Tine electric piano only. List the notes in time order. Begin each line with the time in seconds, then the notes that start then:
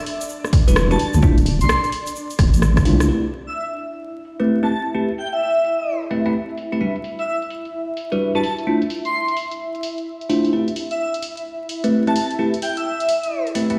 0.68 G3 D4 E4 F#4 B4
0.91 G3 D4 E4 F#4 B4
1.23 A3 D4 E4 F4 C5
2.85 A3 D4 E4 F4 C5
3.09 A3 C4 E4 G4 B4
4.40 A3 C4 E4 G4 B4
4.63 A3 C4 E4 G4 B4
4.95 A3 C4 E4 G4 B4
6.11 A3 C4 E4 G4 B4
6.26 A3 C4 E4 G4 B4
6.72 A3 C4 E4 G4 B4
6.81 G3 D4 E4 F#4 B4
8.12 G3 D4 E4 F#4 B4
8.35 G3 D4 E4 F#4 B4
8.67 A3 D4 E4 F4 C5
10.30 A3 D4 E4 F4 C5
10.53 A3 C4 E4 G4 B4
11.84 A3 C4 E4 G4 B4
12.07 A3 C4 E4 G4 B4
12.39 A3 C4 E4 G4 B4
13.55 A3 C4 E4 G4 B4
13.70 A3 C4 E4 G4 B4